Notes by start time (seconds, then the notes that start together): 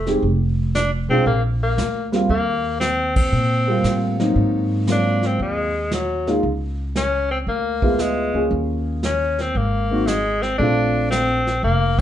Already playing: F1 A3
0.05 G#3 C4 D#4 G4, snare
0.23 F1, brush sweep, kick
0.75 D4, snare, hi-hat pedal
1.08 B1 G#3 C4 D4 F4
1.26 A#1 A#3, brush sweep, kick
1.63 A#3
1.77 D2, snare, hi-hat pedal
2.12 G3 A#3 C4 F4, snare
2.29 D#2 A#3, brush sweep, kick
2.80 C4, snare, hi-hat pedal
3.16 C4, kick, ride
3.32 A#2, brush sweep
3.67 G3 A#3 C4 F4
3.84 A2, snare, hi-hat pedal
4.19 F#3 A#3 C4 D#4, snare
4.35 G#2, brush sweep, kick
4.87 F#3 A#3 C4 F4, snare, hi-hat pedal
4.91 D4
5.23 C4, snare
5.39 D#2 G#3, brush sweep, kick
5.91 F#3, snare, hi-hat pedal
6.27 G#3 A#3 D#4 F4, snare
6.43 C#2, brush sweep, kick
6.95 C#4, snare, hi-hat pedal
7.31 C4
7.47 D2 A#3, brush sweep, kick
7.82 G#3 B3 E4 F4, kick
7.99 G#3, snare, hi-hat pedal
8.34 C#2 A#3 C#4 F4 G#4
8.51 D#2, brush sweep, kick
9.03 C#4, snare, hi-hat pedal
9.39 C4, snare
9.55 G#1 A#3, brush sweep, kick
9.91 A#3 C4 D#4 F#4
10.07 G#3, snare, hi-hat pedal
10.42 C4, snare
10.58 A#1 A3 C4 D4 F4, brush sweep, kick
11.10 C4, snare, hi-hat pedal
11.47 snare
11.63 F1 A#3, brush sweep, kick